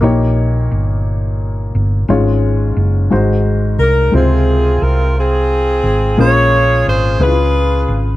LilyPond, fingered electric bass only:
\new Staff \with { instrumentName = "Fingered electric bass" } { \clef bass \time 6/8 \key des \major \tempo 4. = 59 bes,,4 g,,4. g,,8 | aes,,4 ges,,8 aes,,4 c,8 | des,4 c,4. aes,,8 | bes,,4 aes,,8 des,4 aes,,8 | }